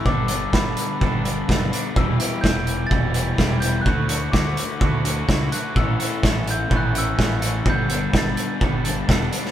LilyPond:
<<
  \new Staff \with { instrumentName = "Glockenspiel" } { \time 4/4 \key g \lydian \tempo 4 = 126 d'''4 b''2 r4 | e'''4 g'''4 a'''4. g'''8 | fis'''4 d'''2 r8 fis'''8 | e'''4. g'''8 fis'''8 e'''4. |
g'''4 a'''4 r2 | }
  \new Staff \with { instrumentName = "Clean electric guitar" } { \time 4/4 \key g \lydian <g b d' a'>8 <b d' a'>8 <g b d' a'>4 <g b d' a'>8 <b d' a'>8 <g b d' a'>8 <b d' a'>8 | <e, b, e g e' g'>8 <e g e' g'>8 <e e' g'>4 <e, b, e g e' g'>8 <e g e' g'>8 <e g e' g'>8 <e g e' g'>8 | <d a e' fis'>8 <a e' fis'>8 <d a e' fis'>4 <d a e' fis'>8 <a e' fis'>8 <d a e' fis'>8 <a e' fis'>8 | <a, e b cis' a'>8 <b cis' a'>8 <e b cis' a'>4 <a, e b cis' a'>8 <b cis' a'>8 <e b cis' a'>8 <b cis' a'>8 |
<g b d' a'>8 <b d' a'>8 <g b d' a'>4 <g b d' a'>8 <b d' a'>8 <g b d' a'>8 <b d' a'>8 | }
  \new Staff \with { instrumentName = "Overdriven electric guitar" } { \time 4/4 \key g \lydian <g, d g b d'>8 <g b d'>8 <d g b d'>4 <g, d g b d'>8 <g b d'>8 <d g b d'>8 <g b d'>8 | <e g b e'>8 <g b e'>8 <e g b e'>4 <e g b e'>8 <g b e'>8 <e g b e'>8 <g b e'>8 | <d a d' fis'>8 <a d' fis'>8 <d a d' fis'>4 <d a d' fis'>8 <a d' fis'>8 <d a d' fis'>8 <a d' fis'>8 | <a, e a cis' e'>8 <a cis' e'>8 <e a cis' e'>4 <a, e a cis' e'>8 <a cis' e'>8 <e a cis' e'>8 <a cis' e'>8 |
<g, d g b d'>8 <g b d'>8 <d g b d'>4 <g, d g b d'>8 <g b d'>8 <d g b d'>8 <g b d'>8 | }
  \new Staff \with { instrumentName = "Picked electric bass" } { \clef bass \time 4/4 \key g \lydian g,,4 g,,8 r8 g,,4 fis,,8 r8 | e,,8 r8 e,,4 e,,4 e,,4 | d,4 d,8 r8 d,4 cis,8 r8 | a,,8 r8 a,,4 a,,4 a,,4 |
g,,4 g,,8 r8 g,,4 e,,8 r8 | }
  \new DrumStaff \with { instrumentName = "Drums" } \drummode { \time 4/4 bd8 hh8 <bd sn>8 hh8 bd8 hh8 <bd sn>8 hh8 | bd8 hh8 <bd sn>8 hh8 bd8 hh8 <bd sn>8 hh8 | bd8 hh8 <bd sn>8 hh8 bd8 hh8 <bd sn>8 hh8 | bd8 hh8 <bd sn>8 hh8 bd8 hh8 <bd sn>8 hh8 |
bd8 hh8 <bd sn>8 hh8 bd8 hh8 <bd sn>8 hh16 sn16 | }
>>